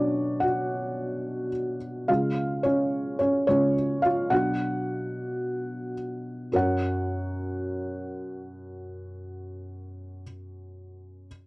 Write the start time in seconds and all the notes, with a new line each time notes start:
Already playing: B2 F#3 C#4 D4 C#5 D5
0.40 F#4 F#5
2.08 C#3 G#3 F4 F5
2.63 C#4 C#5
3.19 C#4 C#5
3.47 C#3 G#3 C#4 F4 C#5
4.02 F4 F5
4.30 B2 F#3 D4 F#4 F#5
6.52 F#2 F#4 A#4 C#5 F#5